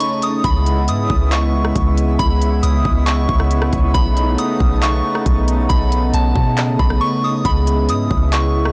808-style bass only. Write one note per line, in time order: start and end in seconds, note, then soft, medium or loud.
0.44 0.89 C#2 loud
0.88 1.09 G#2 loud
1.10 1.73 C#2 loud
1.76 2.18 C#2 loud
2.19 2.61 C#2 loud
2.63 2.84 C#2 loud
2.85 3.27 C#2 loud
3.29 3.71 C#2 loud
3.73 3.94 C#2 loud
3.95 4.37 B1 loud
4.60 5.02 B1 loud
5.26 5.68 B1 loud
5.70 6.12 B1 loud
6.14 6.35 B1 loud
6.36 6.78 B2 loud
6.79 7.00 B1 loud
7.45 7.90 C#2 loud
7.89 8.09 G#2 loud
8.11 8.72 C#2 loud